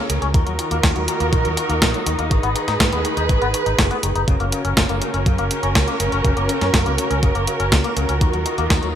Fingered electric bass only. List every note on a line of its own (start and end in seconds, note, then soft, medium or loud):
0.10 0.20 C#2 medium
0.22 0.32 C#2 medium
0.34 0.45 D#2 loud
0.47 0.57 D#2 medium
0.71 0.81 D#2 medium
0.84 0.94 D#2 loud
0.96 1.06 D#2 medium
1.20 1.31 D#2 medium
1.33 1.43 A#1 loud
1.45 1.55 D#2 medium
1.70 1.80 D#2 medium
1.82 1.92 A#1 loud
2.06 2.17 D#2 medium
2.19 2.29 D#2 medium
2.31 2.41 G#1 loud
2.43 2.54 G#1 medium
2.68 2.78 G#2 medium
2.80 2.90 G#2 loud
2.92 3.03 D#2 medium
3.17 3.27 D#2 medium
3.29 3.40 G#1 loud
3.42 3.52 G#1 medium
3.66 3.77 G#1 medium
3.79 3.89 F#1 loud
4.03 4.13 F#1 medium
4.15 4.26 F#1 medium
4.28 4.38 F#1 loud
4.40 4.50 F#1 medium
4.65 4.75 F#1 medium
4.77 4.87 F#1 loud
4.89 5.00 F#1 medium
5.14 5.24 F#1 medium
5.26 5.36 F#2 loud
5.39 5.49 F#1 medium
5.63 5.73 F#1 medium
5.75 5.86 C#2 loud
6.00 6.10 F#1 loud
6.12 6.23 F#1 medium
6.25 6.35 F#1 loud
6.37 6.47 F#1 medium
6.61 6.72 F#2 medium
6.74 6.84 F#2 loud
6.86 6.96 C#2 medium
7.11 7.21 C#2 medium
7.23 7.33 F#1 loud
7.35 7.45 F#1 medium
7.60 7.70 F#1 medium
7.72 7.82 C#2 loud
7.97 8.07 C#2 medium
8.09 8.19 C#2 medium
8.21 8.32 D#2 loud
8.34 8.44 D#2 medium
8.58 8.68 D#2 medium
8.70 8.81 D#2 loud
8.83 8.93 D#2 medium